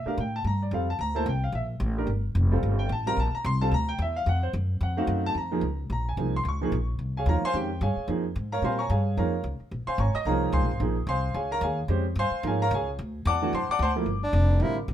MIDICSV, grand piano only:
0, 0, Header, 1, 2, 480
1, 0, Start_track
1, 0, Tempo, 272480
1, 1740, Time_signature, 4, 2, 24, 8
1, 26313, End_track
2, 0, Start_track
2, 0, Title_t, "Grand piano"
2, 0, Program_c, 0, 0
2, 101, Note_on_c, 0, 57, 65
2, 107, Note_on_c, 0, 62, 64
2, 108, Note_on_c, 0, 67, 61
2, 120, Note_on_c, 0, 70, 68
2, 139, Note_on_c, 0, 77, 83
2, 279, Note_off_c, 0, 57, 0
2, 282, Note_off_c, 0, 62, 0
2, 283, Note_off_c, 0, 67, 0
2, 288, Note_off_c, 0, 70, 0
2, 313, Note_off_c, 0, 77, 0
2, 358, Note_on_c, 0, 79, 80
2, 602, Note_off_c, 0, 79, 0
2, 631, Note_on_c, 0, 81, 90
2, 799, Note_off_c, 0, 81, 0
2, 830, Note_on_c, 0, 82, 91
2, 1078, Note_off_c, 0, 82, 0
2, 1100, Note_on_c, 0, 74, 68
2, 1273, Note_off_c, 0, 74, 0
2, 1278, Note_on_c, 0, 55, 62
2, 1285, Note_on_c, 0, 60, 59
2, 1288, Note_on_c, 0, 65, 58
2, 1303, Note_on_c, 0, 69, 70
2, 1306, Note_on_c, 0, 77, 81
2, 1522, Note_off_c, 0, 55, 0
2, 1526, Note_off_c, 0, 60, 0
2, 1527, Note_off_c, 0, 65, 0
2, 1535, Note_off_c, 0, 69, 0
2, 1556, Note_off_c, 0, 77, 0
2, 1586, Note_on_c, 0, 81, 92
2, 1757, Note_off_c, 0, 81, 0
2, 1774, Note_on_c, 0, 82, 107
2, 2023, Note_on_c, 0, 58, 72
2, 2031, Note_off_c, 0, 82, 0
2, 2036, Note_on_c, 0, 64, 70
2, 2040, Note_on_c, 0, 69, 65
2, 2046, Note_on_c, 0, 81, 89
2, 2048, Note_on_c, 0, 72, 81
2, 2201, Note_off_c, 0, 58, 0
2, 2208, Note_off_c, 0, 64, 0
2, 2210, Note_off_c, 0, 69, 0
2, 2214, Note_off_c, 0, 72, 0
2, 2227, Note_off_c, 0, 81, 0
2, 2273, Note_on_c, 0, 79, 88
2, 2521, Note_off_c, 0, 79, 0
2, 2531, Note_on_c, 0, 77, 84
2, 2710, Note_off_c, 0, 77, 0
2, 2732, Note_on_c, 0, 76, 88
2, 2892, Note_off_c, 0, 76, 0
2, 3475, Note_on_c, 0, 57, 67
2, 3477, Note_on_c, 0, 62, 65
2, 3490, Note_on_c, 0, 67, 62
2, 3494, Note_on_c, 0, 70, 76
2, 3648, Note_off_c, 0, 57, 0
2, 3650, Note_off_c, 0, 62, 0
2, 3656, Note_off_c, 0, 67, 0
2, 3658, Note_off_c, 0, 70, 0
2, 4424, Note_on_c, 0, 55, 70
2, 4435, Note_on_c, 0, 60, 67
2, 4442, Note_on_c, 0, 65, 69
2, 4448, Note_on_c, 0, 69, 81
2, 4916, Note_on_c, 0, 79, 91
2, 5065, Note_off_c, 0, 55, 0
2, 5070, Note_off_c, 0, 60, 0
2, 5074, Note_off_c, 0, 65, 0
2, 5076, Note_off_c, 0, 69, 0
2, 5104, Note_off_c, 0, 79, 0
2, 5150, Note_on_c, 0, 81, 89
2, 5396, Note_on_c, 0, 55, 78
2, 5402, Note_off_c, 0, 81, 0
2, 5405, Note_on_c, 0, 60, 64
2, 5409, Note_on_c, 0, 65, 67
2, 5410, Note_on_c, 0, 82, 123
2, 5415, Note_on_c, 0, 70, 83
2, 5571, Note_off_c, 0, 55, 0
2, 5575, Note_off_c, 0, 60, 0
2, 5577, Note_off_c, 0, 65, 0
2, 5580, Note_off_c, 0, 70, 0
2, 5592, Note_off_c, 0, 82, 0
2, 5630, Note_on_c, 0, 81, 96
2, 5882, Note_off_c, 0, 81, 0
2, 5896, Note_on_c, 0, 82, 93
2, 6075, Note_off_c, 0, 82, 0
2, 6093, Note_on_c, 0, 84, 103
2, 6354, Note_off_c, 0, 84, 0
2, 6363, Note_on_c, 0, 55, 70
2, 6366, Note_on_c, 0, 81, 99
2, 6373, Note_on_c, 0, 60, 62
2, 6383, Note_on_c, 0, 65, 66
2, 6383, Note_on_c, 0, 69, 80
2, 6493, Note_off_c, 0, 81, 0
2, 6519, Note_on_c, 0, 81, 75
2, 6535, Note_off_c, 0, 55, 0
2, 6540, Note_off_c, 0, 60, 0
2, 6545, Note_off_c, 0, 65, 0
2, 6545, Note_off_c, 0, 69, 0
2, 6552, Note_off_c, 0, 81, 0
2, 6590, Note_on_c, 0, 82, 107
2, 6843, Note_off_c, 0, 82, 0
2, 6846, Note_on_c, 0, 79, 103
2, 7031, Note_off_c, 0, 79, 0
2, 7080, Note_on_c, 0, 76, 91
2, 7328, Note_off_c, 0, 76, 0
2, 7335, Note_on_c, 0, 77, 107
2, 7516, Note_off_c, 0, 77, 0
2, 7552, Note_on_c, 0, 78, 99
2, 7804, Note_on_c, 0, 72, 80
2, 7805, Note_off_c, 0, 78, 0
2, 7919, Note_off_c, 0, 72, 0
2, 8506, Note_on_c, 0, 78, 89
2, 8756, Note_on_c, 0, 57, 77
2, 8761, Note_on_c, 0, 60, 73
2, 8762, Note_off_c, 0, 78, 0
2, 8766, Note_on_c, 0, 77, 86
2, 8769, Note_on_c, 0, 63, 70
2, 8777, Note_on_c, 0, 66, 86
2, 9207, Note_off_c, 0, 77, 0
2, 9273, Note_on_c, 0, 81, 110
2, 9394, Note_off_c, 0, 57, 0
2, 9397, Note_off_c, 0, 60, 0
2, 9401, Note_off_c, 0, 63, 0
2, 9404, Note_off_c, 0, 66, 0
2, 9446, Note_off_c, 0, 81, 0
2, 9468, Note_on_c, 0, 82, 81
2, 9717, Note_on_c, 0, 58, 68
2, 9722, Note_on_c, 0, 53, 75
2, 9729, Note_on_c, 0, 63, 62
2, 9736, Note_on_c, 0, 68, 74
2, 9894, Note_off_c, 0, 58, 0
2, 9897, Note_off_c, 0, 53, 0
2, 9900, Note_off_c, 0, 63, 0
2, 9904, Note_off_c, 0, 68, 0
2, 10160, Note_off_c, 0, 82, 0
2, 10436, Note_on_c, 0, 82, 85
2, 10689, Note_off_c, 0, 82, 0
2, 10723, Note_on_c, 0, 80, 79
2, 10883, Note_on_c, 0, 53, 58
2, 10891, Note_on_c, 0, 58, 56
2, 10900, Note_on_c, 0, 63, 54
2, 10902, Note_on_c, 0, 68, 62
2, 11132, Note_off_c, 0, 53, 0
2, 11136, Note_off_c, 0, 58, 0
2, 11141, Note_off_c, 0, 63, 0
2, 11142, Note_off_c, 0, 68, 0
2, 11148, Note_off_c, 0, 80, 0
2, 11211, Note_on_c, 0, 84, 95
2, 11312, Note_off_c, 0, 84, 0
2, 11338, Note_on_c, 0, 84, 64
2, 11368, Note_off_c, 0, 84, 0
2, 11424, Note_on_c, 0, 85, 93
2, 11652, Note_on_c, 0, 53, 75
2, 11662, Note_on_c, 0, 58, 75
2, 11668, Note_on_c, 0, 63, 70
2, 11682, Note_on_c, 0, 68, 93
2, 11823, Note_off_c, 0, 53, 0
2, 11828, Note_off_c, 0, 58, 0
2, 11831, Note_off_c, 0, 63, 0
2, 11838, Note_off_c, 0, 68, 0
2, 12101, Note_off_c, 0, 85, 0
2, 12636, Note_on_c, 0, 80, 89
2, 12656, Note_on_c, 0, 73, 65
2, 12657, Note_on_c, 0, 68, 69
2, 12658, Note_on_c, 0, 77, 72
2, 12803, Note_on_c, 0, 53, 62
2, 12810, Note_off_c, 0, 80, 0
2, 12813, Note_on_c, 0, 58, 56
2, 12818, Note_off_c, 0, 77, 0
2, 12820, Note_off_c, 0, 73, 0
2, 12820, Note_on_c, 0, 63, 54
2, 12821, Note_off_c, 0, 68, 0
2, 12834, Note_on_c, 0, 65, 69
2, 12838, Note_on_c, 0, 82, 91
2, 12845, Note_on_c, 0, 77, 70
2, 12848, Note_on_c, 0, 73, 69
2, 12851, Note_on_c, 0, 70, 66
2, 13053, Note_off_c, 0, 53, 0
2, 13058, Note_off_c, 0, 58, 0
2, 13061, Note_off_c, 0, 63, 0
2, 13068, Note_off_c, 0, 65, 0
2, 13091, Note_off_c, 0, 82, 0
2, 13094, Note_off_c, 0, 77, 0
2, 13096, Note_off_c, 0, 73, 0
2, 13098, Note_off_c, 0, 70, 0
2, 13124, Note_on_c, 0, 84, 116
2, 13129, Note_on_c, 0, 80, 95
2, 13137, Note_on_c, 0, 77, 86
2, 13145, Note_on_c, 0, 72, 94
2, 13272, Note_on_c, 0, 51, 60
2, 13286, Note_on_c, 0, 56, 56
2, 13286, Note_on_c, 0, 61, 54
2, 13294, Note_off_c, 0, 84, 0
2, 13297, Note_off_c, 0, 80, 0
2, 13298, Note_on_c, 0, 67, 68
2, 13301, Note_off_c, 0, 77, 0
2, 13305, Note_off_c, 0, 72, 0
2, 13325, Note_on_c, 0, 79, 83
2, 13527, Note_off_c, 0, 51, 0
2, 13535, Note_off_c, 0, 56, 0
2, 13535, Note_off_c, 0, 61, 0
2, 13541, Note_off_c, 0, 67, 0
2, 13749, Note_off_c, 0, 79, 0
2, 13782, Note_on_c, 0, 68, 67
2, 13784, Note_on_c, 0, 80, 86
2, 13786, Note_on_c, 0, 73, 68
2, 13789, Note_on_c, 0, 77, 69
2, 14216, Note_off_c, 0, 68, 0
2, 14218, Note_off_c, 0, 80, 0
2, 14219, Note_off_c, 0, 73, 0
2, 14220, Note_off_c, 0, 77, 0
2, 14236, Note_on_c, 0, 53, 64
2, 14247, Note_on_c, 0, 58, 62
2, 14250, Note_on_c, 0, 63, 59
2, 14260, Note_on_c, 0, 68, 71
2, 14490, Note_off_c, 0, 53, 0
2, 14495, Note_off_c, 0, 58, 0
2, 14497, Note_off_c, 0, 63, 0
2, 14502, Note_off_c, 0, 68, 0
2, 15014, Note_on_c, 0, 82, 103
2, 15021, Note_on_c, 0, 77, 82
2, 15029, Note_on_c, 0, 70, 81
2, 15030, Note_on_c, 0, 73, 89
2, 15191, Note_on_c, 0, 55, 66
2, 15193, Note_off_c, 0, 70, 0
2, 15199, Note_off_c, 0, 82, 0
2, 15199, Note_on_c, 0, 60, 61
2, 15202, Note_off_c, 0, 77, 0
2, 15207, Note_off_c, 0, 73, 0
2, 15214, Note_on_c, 0, 65, 59
2, 15219, Note_on_c, 0, 70, 69
2, 15231, Note_on_c, 0, 84, 86
2, 15232, Note_on_c, 0, 77, 77
2, 15233, Note_on_c, 0, 72, 70
2, 15248, Note_on_c, 0, 80, 76
2, 15447, Note_off_c, 0, 55, 0
2, 15451, Note_off_c, 0, 60, 0
2, 15458, Note_off_c, 0, 65, 0
2, 15461, Note_off_c, 0, 70, 0
2, 15472, Note_off_c, 0, 80, 0
2, 15479, Note_on_c, 0, 85, 95
2, 15487, Note_off_c, 0, 77, 0
2, 15487, Note_off_c, 0, 84, 0
2, 15488, Note_off_c, 0, 72, 0
2, 15488, Note_on_c, 0, 82, 83
2, 15494, Note_on_c, 0, 73, 81
2, 15498, Note_on_c, 0, 80, 78
2, 15663, Note_off_c, 0, 73, 0
2, 15663, Note_off_c, 0, 80, 0
2, 15671, Note_off_c, 0, 85, 0
2, 15675, Note_off_c, 0, 82, 0
2, 15685, Note_on_c, 0, 68, 65
2, 15687, Note_on_c, 0, 77, 68
2, 15689, Note_on_c, 0, 73, 66
2, 15689, Note_on_c, 0, 80, 79
2, 16127, Note_off_c, 0, 68, 0
2, 16128, Note_off_c, 0, 77, 0
2, 16129, Note_off_c, 0, 73, 0
2, 16129, Note_off_c, 0, 80, 0
2, 16159, Note_on_c, 0, 53, 61
2, 16167, Note_on_c, 0, 58, 63
2, 16169, Note_on_c, 0, 82, 79
2, 16175, Note_on_c, 0, 73, 65
2, 16176, Note_on_c, 0, 77, 73
2, 16177, Note_on_c, 0, 63, 60
2, 16178, Note_on_c, 0, 70, 67
2, 16179, Note_on_c, 0, 68, 73
2, 16410, Note_off_c, 0, 53, 0
2, 16414, Note_off_c, 0, 58, 0
2, 16419, Note_off_c, 0, 63, 0
2, 16420, Note_off_c, 0, 68, 0
2, 16609, Note_off_c, 0, 82, 0
2, 16612, Note_off_c, 0, 73, 0
2, 16612, Note_off_c, 0, 77, 0
2, 16613, Note_off_c, 0, 70, 0
2, 17389, Note_on_c, 0, 84, 98
2, 17404, Note_on_c, 0, 72, 73
2, 17405, Note_on_c, 0, 80, 75
2, 17410, Note_on_c, 0, 77, 71
2, 17584, Note_off_c, 0, 84, 0
2, 17592, Note_off_c, 0, 72, 0
2, 17592, Note_off_c, 0, 80, 0
2, 17595, Note_off_c, 0, 77, 0
2, 17610, Note_on_c, 0, 85, 86
2, 17613, Note_on_c, 0, 82, 71
2, 17618, Note_on_c, 0, 80, 71
2, 17619, Note_on_c, 0, 73, 72
2, 17874, Note_off_c, 0, 85, 0
2, 17876, Note_off_c, 0, 82, 0
2, 17876, Note_on_c, 0, 87, 101
2, 17879, Note_off_c, 0, 73, 0
2, 17879, Note_off_c, 0, 80, 0
2, 17885, Note_on_c, 0, 75, 90
2, 18068, Note_off_c, 0, 87, 0
2, 18072, Note_off_c, 0, 75, 0
2, 18078, Note_on_c, 0, 70, 68
2, 18081, Note_on_c, 0, 73, 70
2, 18083, Note_on_c, 0, 77, 72
2, 18083, Note_on_c, 0, 82, 90
2, 18087, Note_on_c, 0, 53, 76
2, 18095, Note_on_c, 0, 58, 69
2, 18095, Note_on_c, 0, 63, 70
2, 18107, Note_on_c, 0, 68, 84
2, 18521, Note_off_c, 0, 70, 0
2, 18522, Note_off_c, 0, 73, 0
2, 18524, Note_off_c, 0, 77, 0
2, 18524, Note_off_c, 0, 82, 0
2, 18548, Note_on_c, 0, 80, 70
2, 18553, Note_on_c, 0, 72, 73
2, 18554, Note_on_c, 0, 77, 67
2, 18554, Note_on_c, 0, 84, 97
2, 18784, Note_off_c, 0, 53, 0
2, 18787, Note_off_c, 0, 63, 0
2, 18788, Note_off_c, 0, 58, 0
2, 18794, Note_off_c, 0, 68, 0
2, 18995, Note_off_c, 0, 80, 0
2, 18998, Note_off_c, 0, 72, 0
2, 18998, Note_off_c, 0, 77, 0
2, 18998, Note_off_c, 0, 84, 0
2, 19025, Note_on_c, 0, 53, 65
2, 19025, Note_on_c, 0, 58, 63
2, 19039, Note_on_c, 0, 63, 59
2, 19053, Note_on_c, 0, 68, 76
2, 19281, Note_off_c, 0, 53, 0
2, 19281, Note_off_c, 0, 58, 0
2, 19288, Note_off_c, 0, 63, 0
2, 19295, Note_off_c, 0, 68, 0
2, 19530, Note_on_c, 0, 80, 78
2, 19530, Note_on_c, 0, 84, 99
2, 19534, Note_on_c, 0, 77, 75
2, 19547, Note_on_c, 0, 72, 78
2, 19962, Note_off_c, 0, 80, 0
2, 19966, Note_off_c, 0, 84, 0
2, 19968, Note_off_c, 0, 77, 0
2, 19975, Note_off_c, 0, 72, 0
2, 19988, Note_on_c, 0, 80, 85
2, 19999, Note_on_c, 0, 77, 64
2, 20004, Note_on_c, 0, 68, 65
2, 20005, Note_on_c, 0, 73, 70
2, 20256, Note_off_c, 0, 77, 0
2, 20261, Note_off_c, 0, 80, 0
2, 20269, Note_off_c, 0, 68, 0
2, 20269, Note_off_c, 0, 73, 0
2, 20282, Note_on_c, 0, 77, 84
2, 20292, Note_on_c, 0, 70, 88
2, 20294, Note_on_c, 0, 82, 106
2, 20301, Note_on_c, 0, 73, 80
2, 20468, Note_off_c, 0, 77, 0
2, 20470, Note_off_c, 0, 73, 0
2, 20473, Note_off_c, 0, 70, 0
2, 20474, Note_off_c, 0, 82, 0
2, 20489, Note_on_c, 0, 80, 86
2, 20497, Note_on_c, 0, 73, 67
2, 20498, Note_on_c, 0, 77, 69
2, 20503, Note_on_c, 0, 68, 75
2, 20751, Note_off_c, 0, 80, 0
2, 20755, Note_off_c, 0, 73, 0
2, 20756, Note_off_c, 0, 77, 0
2, 20758, Note_off_c, 0, 68, 0
2, 20947, Note_on_c, 0, 56, 75
2, 20949, Note_on_c, 0, 61, 68
2, 20960, Note_on_c, 0, 67, 67
2, 20960, Note_on_c, 0, 72, 74
2, 21199, Note_off_c, 0, 56, 0
2, 21200, Note_off_c, 0, 61, 0
2, 21206, Note_off_c, 0, 67, 0
2, 21206, Note_off_c, 0, 72, 0
2, 21475, Note_on_c, 0, 72, 92
2, 21476, Note_on_c, 0, 84, 107
2, 21478, Note_on_c, 0, 80, 88
2, 21481, Note_on_c, 0, 77, 87
2, 21898, Note_off_c, 0, 72, 0
2, 21898, Note_off_c, 0, 84, 0
2, 21899, Note_off_c, 0, 80, 0
2, 21900, Note_off_c, 0, 77, 0
2, 21906, Note_on_c, 0, 53, 56
2, 21916, Note_on_c, 0, 58, 56
2, 21919, Note_on_c, 0, 63, 56
2, 21927, Note_on_c, 0, 70, 66
2, 21972, Note_on_c, 0, 80, 89
2, 21976, Note_on_c, 0, 68, 66
2, 21979, Note_on_c, 0, 73, 69
2, 21987, Note_on_c, 0, 77, 74
2, 22158, Note_off_c, 0, 53, 0
2, 22163, Note_off_c, 0, 58, 0
2, 22164, Note_off_c, 0, 63, 0
2, 22168, Note_off_c, 0, 70, 0
2, 22210, Note_off_c, 0, 73, 0
2, 22211, Note_off_c, 0, 80, 0
2, 22213, Note_off_c, 0, 77, 0
2, 22214, Note_off_c, 0, 68, 0
2, 22232, Note_on_c, 0, 70, 81
2, 22232, Note_on_c, 0, 82, 107
2, 22236, Note_on_c, 0, 73, 84
2, 22239, Note_on_c, 0, 77, 91
2, 22401, Note_off_c, 0, 70, 0
2, 22401, Note_off_c, 0, 82, 0
2, 22403, Note_off_c, 0, 73, 0
2, 22405, Note_off_c, 0, 77, 0
2, 22449, Note_on_c, 0, 80, 94
2, 22454, Note_on_c, 0, 77, 74
2, 22461, Note_on_c, 0, 68, 75
2, 22464, Note_on_c, 0, 73, 72
2, 22689, Note_off_c, 0, 80, 0
2, 22692, Note_off_c, 0, 77, 0
2, 22695, Note_off_c, 0, 68, 0
2, 22697, Note_off_c, 0, 73, 0
2, 23378, Note_on_c, 0, 86, 116
2, 23383, Note_on_c, 0, 78, 92
2, 23385, Note_on_c, 0, 74, 89
2, 23400, Note_on_c, 0, 81, 86
2, 23643, Note_on_c, 0, 52, 83
2, 23647, Note_on_c, 0, 57, 72
2, 23656, Note_on_c, 0, 62, 69
2, 23656, Note_on_c, 0, 66, 90
2, 23806, Note_off_c, 0, 86, 0
2, 23809, Note_off_c, 0, 78, 0
2, 23810, Note_off_c, 0, 74, 0
2, 23811, Note_off_c, 0, 52, 0
2, 23813, Note_off_c, 0, 57, 0
2, 23817, Note_off_c, 0, 62, 0
2, 23818, Note_off_c, 0, 66, 0
2, 23818, Note_off_c, 0, 81, 0
2, 23862, Note_on_c, 0, 84, 95
2, 23864, Note_on_c, 0, 81, 68
2, 23866, Note_on_c, 0, 72, 67
2, 23876, Note_on_c, 0, 78, 66
2, 24114, Note_off_c, 0, 84, 0
2, 24116, Note_off_c, 0, 72, 0
2, 24116, Note_off_c, 0, 81, 0
2, 24121, Note_off_c, 0, 78, 0
2, 24150, Note_on_c, 0, 78, 91
2, 24153, Note_on_c, 0, 86, 117
2, 24154, Note_on_c, 0, 74, 93
2, 24155, Note_on_c, 0, 81, 84
2, 24319, Note_off_c, 0, 78, 0
2, 24320, Note_off_c, 0, 86, 0
2, 24321, Note_off_c, 0, 74, 0
2, 24321, Note_off_c, 0, 81, 0
2, 24352, Note_on_c, 0, 72, 86
2, 24353, Note_on_c, 0, 81, 85
2, 24354, Note_on_c, 0, 84, 98
2, 24366, Note_on_c, 0, 78, 76
2, 24505, Note_off_c, 0, 72, 0
2, 24505, Note_off_c, 0, 81, 0
2, 24506, Note_off_c, 0, 84, 0
2, 24515, Note_off_c, 0, 78, 0
2, 24587, Note_on_c, 0, 53, 69
2, 24595, Note_on_c, 0, 58, 68
2, 24598, Note_on_c, 0, 64, 59
2, 24601, Note_on_c, 0, 69, 74
2, 24762, Note_off_c, 0, 53, 0
2, 24766, Note_off_c, 0, 58, 0
2, 24768, Note_off_c, 0, 64, 0
2, 24769, Note_off_c, 0, 69, 0
2, 25738, Note_on_c, 0, 50, 62
2, 25753, Note_on_c, 0, 55, 62
2, 25757, Note_on_c, 0, 60, 59
2, 25760, Note_on_c, 0, 65, 60
2, 25763, Note_on_c, 0, 70, 70
2, 25991, Note_off_c, 0, 50, 0
2, 25999, Note_off_c, 0, 55, 0
2, 26001, Note_off_c, 0, 60, 0
2, 26002, Note_off_c, 0, 65, 0
2, 26004, Note_off_c, 0, 70, 0
2, 26313, End_track
0, 0, End_of_file